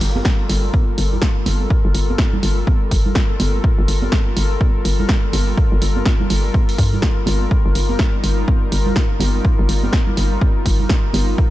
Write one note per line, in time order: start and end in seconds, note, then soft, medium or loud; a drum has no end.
0.00 0.21 G1 medium
0.00 11.50 G3 medium
0.00 11.50 F4 medium
0.00 7.47 A4 medium
0.00 11.50 A#4 medium
0.00 open hi-hat loud
0.16 high conga medium
0.25 kick loud
0.25 snare loud
0.50 0.69 G1 medium
0.50 open hi-hat loud
0.73 kick loud
0.73 high conga medium
0.98 1.18 G1 medium
0.98 open hi-hat loud
1.13 low conga medium
1.22 kick loud
1.22 snare loud
1.46 1.66 G1 medium
1.46 open hi-hat loud
1.46 high conga medium
1.70 kick loud
1.85 1.92 G1 loud
1.95 2.14 G1 medium
1.95 open hi-hat loud
2.10 high conga medium
2.18 kick loud
2.18 snare loud
2.33 low conga medium
2.43 2.63 G1 medium
2.43 open hi-hat loud
2.67 kick loud
2.67 high conga medium
2.91 3.11 G1 medium
2.91 kick medium
2.91 open hi-hat loud
3.06 low conga medium
3.15 kick loud
3.15 snare loud
3.40 3.59 G1 medium
3.40 open hi-hat loud
3.40 high conga medium
3.64 kick loud
3.79 3.86 G1 loud
3.88 4.08 G1 medium
3.88 open hi-hat loud
4.02 high conga medium
4.12 kick loud
4.12 snare loud
4.37 4.56 G1 medium
4.37 open hi-hat loud
4.61 kick loud
4.61 high conga medium
4.85 5.05 G1 medium
4.85 open hi-hat loud
5.00 low conga medium
5.09 kick loud
5.09 snare loud
5.33 5.53 G1 medium
5.33 open hi-hat loud
5.33 high conga medium
5.58 kick loud
5.72 5.80 G1 medium
5.82 6.01 G1 medium
5.82 open hi-hat loud
5.96 high conga medium
6.06 kick loud
6.06 snare loud
6.20 low conga medium
6.30 6.50 G1 medium
6.30 open hi-hat loud
6.54 kick loud
6.54 high conga medium
6.69 open hi-hat medium
6.78 6.98 G2 medium
6.78 kick medium
6.78 open hi-hat loud
6.94 low conga medium
7.02 kick loud
7.02 snare loud
7.26 7.47 G1 loud
7.26 open hi-hat loud
7.26 high conga medium
7.51 11.50 D#4 medium
7.51 kick loud
7.66 7.73 G1 loud
7.75 7.95 G1 medium
7.75 open hi-hat loud
7.89 high conga medium
7.99 kick loud
7.99 snare loud
8.24 8.43 G1 medium
8.24 open hi-hat loud
8.48 kick loud
8.48 high conga medium
8.72 8.92 G1 medium
8.72 open hi-hat loud
8.86 low conga medium
8.96 kick loud
8.96 snare loud
9.20 9.40 G1 medium
9.20 open hi-hat loud
9.20 high conga medium
9.45 kick loud
9.59 9.67 G1 loud
9.69 9.89 G1 medium
9.69 open hi-hat loud
9.83 high conga medium
9.93 kick loud
9.93 snare loud
10.07 low conga medium
10.17 10.37 G1 medium
10.17 open hi-hat loud
10.41 kick loud
10.41 high conga medium
10.66 10.85 G1 medium
10.66 kick medium
10.66 open hi-hat loud
10.80 low conga medium
10.89 kick loud
10.89 snare loud
11.13 11.34 G1 medium
11.13 open hi-hat loud
11.13 high conga medium
11.38 kick loud